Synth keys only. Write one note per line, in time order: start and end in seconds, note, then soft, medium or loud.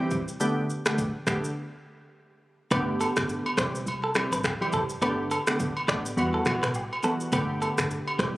0.00 0.20 E3 medium
0.00 0.20 G3 medium
0.00 0.20 C4 medium
0.00 0.20 G4 medium
0.40 0.63 D3 medium
0.40 0.63 A3 medium
0.40 0.63 B3 medium
0.40 0.63 G4 loud
0.86 1.07 D3 medium
0.86 1.07 A3 medium
0.86 1.07 B3 medium
0.86 1.07 G4 medium
1.27 1.50 D3 medium
1.27 1.50 A3 medium
1.27 1.50 B3 medium
1.27 1.50 G4 medium
2.71 3.52 D3 medium
2.71 3.52 A3 medium
2.71 3.52 B3 medium
2.71 3.52 G4 loud
3.58 3.85 E3 medium
3.58 3.85 G3 medium
3.58 3.85 C4 medium
3.58 3.85 G4 medium
4.15 4.38 E3 medium
4.15 4.38 G3 medium
4.15 4.38 C4 medium
4.15 4.38 G4 medium
4.61 4.81 E3 medium
4.61 4.81 G3 medium
4.61 4.81 C4 medium
4.61 4.82 G4 medium
5.02 5.24 D3 medium
5.02 5.25 A3 medium
5.02 5.25 B3 medium
5.02 5.25 G4 loud
5.47 5.68 D3 medium
5.47 5.68 A3 medium
5.47 5.68 B3 medium
5.47 5.68 G4 medium
5.88 6.11 D3 medium
5.88 6.11 A3 medium
5.88 6.11 B3 medium
5.88 6.11 G4 medium
6.17 6.44 E3 medium
6.17 6.44 G3 medium
6.17 6.44 B3 medium
6.17 6.44 F#4 loud
6.45 6.68 E3 medium
6.45 6.69 G3 medium
6.45 6.69 B3 medium
6.45 6.69 F#4 medium
7.03 7.30 E3 medium
7.03 7.30 G3 medium
7.03 7.31 B3 medium
7.03 7.31 F#4 medium
7.32 8.13 D3 medium
7.32 8.13 A3 medium
7.32 8.13 B3 medium
7.32 8.13 G4 loud
8.19 8.37 E3 medium
8.19 8.37 G3 medium
8.19 8.37 C4 medium
8.19 8.37 G4 medium